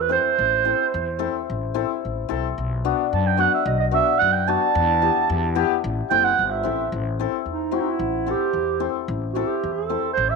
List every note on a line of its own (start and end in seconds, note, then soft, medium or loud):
0.00 0.17 E2 loud
0.00 0.11 B4 medium
0.09 0.24 C4 medium
0.09 0.24 E4 medium
0.09 0.25 A4 medium
0.09 1.45 C5 loud
0.39 0.71 A1 loud
0.65 0.79 C4 medium
0.65 0.79 E4 medium
0.65 0.79 A4 medium
0.94 1.27 E2 loud
1.19 1.33 C4 medium
1.19 1.34 E4 medium
1.19 1.34 A4 medium
1.50 1.82 A1 loud
1.74 1.89 C4 medium
1.74 1.89 E4 medium
1.74 1.89 A4 medium
2.05 2.29 A1 medium
2.29 2.55 B1 medium
2.29 2.43 C4 medium
2.29 2.43 E4 medium
2.29 2.44 A4 loud
2.58 2.91 B1 loud
2.85 2.99 B3 medium
2.85 2.98 D4 medium
2.85 2.99 F#4 medium
3.13 3.45 F#2 loud
3.13 3.28 A5 medium
3.27 3.42 G5 loud
3.37 3.52 B3 medium
3.37 3.52 D4 medium
3.37 3.53 F#4 medium
3.37 3.53 F#5 medium
3.54 3.65 E5 medium
3.66 3.99 B1 loud
3.66 3.79 D#5 loud
3.80 3.86 D#5 medium
3.91 4.06 B3 medium
3.91 4.07 D4 medium
3.91 4.07 F#4 medium
3.91 4.20 E5 loud
4.19 4.54 F#2 loud
4.19 4.34 F#5 loud
4.33 4.49 G5 loud
4.47 4.62 B3 medium
4.47 4.62 D4 medium
4.47 4.62 F#4 medium
4.47 5.84 A5 loud
4.75 5.08 E2 loud
5.02 5.16 B3 medium
5.02 5.16 E4 medium
5.02 5.16 G4 medium
5.30 5.62 E2 loud
5.55 5.70 B3 medium
5.55 5.70 E4 medium
5.55 5.70 G4 loud
5.84 6.00 A1 loud
6.10 6.35 F#1 medium
6.10 6.25 C4 medium
6.10 6.24 E4 medium
6.10 6.25 A4 medium
6.10 6.26 G5 loud
6.24 6.46 F#5 loud
6.39 6.63 G1 medium
6.46 6.52 F#5 medium
6.50 6.92 E5 loud
6.63 6.90 A1 medium
6.63 6.78 C4 medium
6.63 6.79 E4 medium
6.63 6.78 A4 medium
6.92 7.25 A1 loud
7.19 7.33 C4 medium
7.19 7.33 E4 medium
7.19 7.33 A4 medium
7.46 7.78 E2 medium
7.46 7.78 D#4 medium
7.71 7.86 C4 medium
7.71 7.86 E4 medium
7.71 7.86 F#4 medium
7.76 7.91 D#4 medium
7.76 7.82 E4 medium
7.89 8.32 E4 medium
7.99 8.32 A1 loud
8.26 8.40 C4 medium
8.26 8.40 E4 medium
8.26 8.41 A4 medium
8.31 8.83 G4 loud
8.53 8.86 E2 loud
8.80 8.94 C4 medium
8.80 8.94 E4 medium
8.80 8.94 A4 medium
9.08 9.40 A1 loud
9.33 9.48 C4 medium
9.33 9.49 E4 medium
9.33 9.48 F#4 medium
9.33 9.49 A4 medium
9.47 9.74 G4 medium
9.64 9.95 E2 loud
9.72 10.13 A4 medium
9.89 10.02 C4 medium
9.89 10.03 E4 medium
9.89 10.03 A4 medium
10.13 10.31 C5 loud
10.17 10.33 A1 loud
10.30 10.36 E5 loud